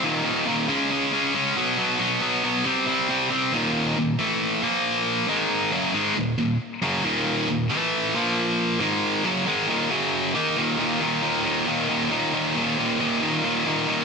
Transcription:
\new Staff \with { instrumentName = "Distorted electric guitar" } { \clef bass \time 4/4 \key bes \dorian \tempo 4 = 136 <ees, bes, ees>8 <ees, bes, ees>8 <ees, bes, ees>8 <des aes des'>8 <des aes des'>8 <des aes des'>8 <des aes des'>8 <b, fis b>8 | <b, fis b>8 <b, fis b>8 <b, fis b>8 <b, fis b>8 <c g c'>8 <c g c'>8 <c g c'>8 <c g c'>8 | <ees, bes, ees>4 <ees, bes,>8 <a, e a>4 <bes, f bes>4. | <aes, ees aes>4 <ges, des ges>8 <aes, ees aes>8 <ees, bes,>8 <ees, bes,>8 r8 <ges, des ges>8 |
<ees, bes, ees>4 <ees, bes,>8 <a, e a>4 <bes, f bes>4. | <aes, ees aes>4 <ges, des ges>8 <aes, ees aes>8 <ees, bes, ees>8 <ges, des ges>4 <ees bes ees'>8 | <ees, bes, ees>8 <ees, bes, ees>8 <ees, bes, ees>8 <ees, bes, ees>8 <ees, bes, ees>8 <ees, bes, ees>8 <ees, bes, ees>8 <ees, bes, ees>8 | <ees, bes, ees>8 <ees, bes, ees>8 <ees, bes, ees>8 <ees, bes, ees>8 <ees, bes, ees>8 <ees, bes, ees>8 <ees, bes, ees>8 <ees, bes, ees>8 | }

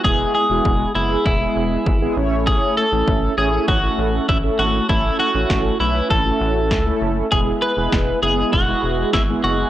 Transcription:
<<
  \new Staff \with { instrumentName = "Clean electric guitar" } { \time 4/4 \key e \major \tempo 4 = 99 gis'8 gis'4 e'8 e'4. r8 | gis'8 a'4 gis'8 fis'4 e'8 fis'8 | e'8 fis'4 e'8 a'4. r8 | gis'8 b'4 gis'8 fis'4 e'8 fis'8 | }
  \new Staff \with { instrumentName = "Analog polysynth" } { \time 4/4 \key e \major <gis b e' gis'>8. <gis b e' fis'>8. <gis b e' gis'>8. <gis b e' gis'>4 <gis b e' gis'>16 <a cis' e' cis''>8~ | <a cis' e' cis''>8 r16 <a cis' e' a'>8. <a cis' e' cis''>8. <a cis' e' a'>4 <a cis' e' a'>8. | <a cis' e' a'>8. <a cis' e' a'>8. <a cis' e' b'>8. <a cis' e' fis'>4 <a cis' e' a'>8. | <gis b e' gis'>8. <gis b e' gis'>8. <gis b e' gis'>8. <gis b e' gis'>4 <gis b e' gis'>8. | }
  \new Staff \with { instrumentName = "Analog synth bass" } { \clef bass \time 4/4 \key e \major e,,8 r16 e,,16 e,,8 fis,,8 e,,8 e,,8 gis,,8 a,,8~ | a,,8 r16 a,,16 a,,8 a,,8 a,,8 a,,8 a,,8 gis,,8 | a,,8 r16 a,,16 a,,8 b,,8 a,,8 a,,8 cis,8 fis,,8 | e,,8 r16 e,,16 e,,8 fis,,8 e,,8 e,,8 gis,,8 fis,,8 | }
  \new DrumStaff \with { instrumentName = "Drums" } \drummode { \time 4/4 bd4 bd4 bd4 bd4 | bd4 bd4 bd4 bd4 | bd4 <bd sn>4 bd4 <bd sn>4 | bd4 <bd sn>4 bd4 <bd sn>4 | }
>>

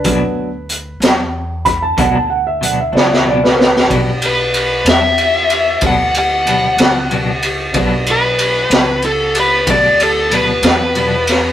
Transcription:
<<
  \new Staff \with { instrumentName = "Upright piano" } { \time 12/8 \key b \minor \tempo 4. = 62 b'4. r4 b''16 a''16 fis''16 a''16 fis''16 e''16 fis''16 e''16 d''16 e''16 d''16 b'16 <ais' b'>8 | <d' fis' b' d''>1. | <d' fis' b' d''>1. | }
  \new Staff \with { instrumentName = "Upright piano" } { \time 12/8 \key b \minor <fis b d'>8 r1 r4. | r1. | r1. | }
  \new Staff \with { instrumentName = "Lead electric guitar" } { \time 12/8 \key b \minor r1. | r8 b'4 e''4. fis''8 fis''2 r8 | r8 b'4. a'8 b'8 d''8 a'8 b'2 | }
  \new Staff \with { instrumentName = "Clean electric guitar" } { \time 12/8 \key b \minor <b, fis b d'>8 r4 <fis b d'>8 r4 <b, fis b d'>8 r8 <b, fis b d'>8 <fis b d'>8 <b, fis b d'>8 r8 | <b, fis b d'>8 r4 <fis b d'>8 r4 <b, fis b d'>8 r8 <b, fis b d'>8 <fis b d'>8 <b, fis b d'>8 r8 | <b, fis b d'>8 r4 <fis b d'>8 r4 <b, fis b d'>8 r8 <b, fis b d'>8 <fis b d'>8 <b, fis b d'>8 r8 | }
  \new Staff \with { instrumentName = "Upright bass" } { \clef bass \time 12/8 \key b \minor d,4. e,4. d,4. cis,4. | b,,4. e,4. d,4. cis,4. | b,,4. cis,4. d,4. e,4. | }
  \new DrumStaff \with { instrumentName = "Drums" } \drummode { \time 12/8 <hh bd>4 hh8 <hh sn>4 <hh bd>8 <hh bd>4 hh8 sn16 sn8 sn16 sn16 sn16 | <bd cymr>8 cymr8 cymr8 <cymr sn>8 cymr8 cymr8 <bd cymr>8 cymr8 cymr8 <cymr sn>8 cymr8 cymr8 | <bd cymr>8 cymr8 cymr8 <cymr sn>8 cymr8 cymr8 <bd cymr>8 cymr8 cymr8 <cymr sn>8 cymr8 <cymr sn>8 | }
>>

